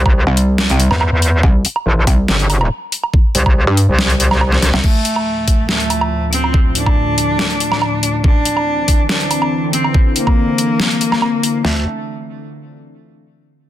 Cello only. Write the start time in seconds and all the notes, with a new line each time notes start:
4.84 A3
5.69 A3
6.33 C4
6.75 D4
8.24 D4
9.09 D4
9.73 C4
10.16 A#3
11.65 A3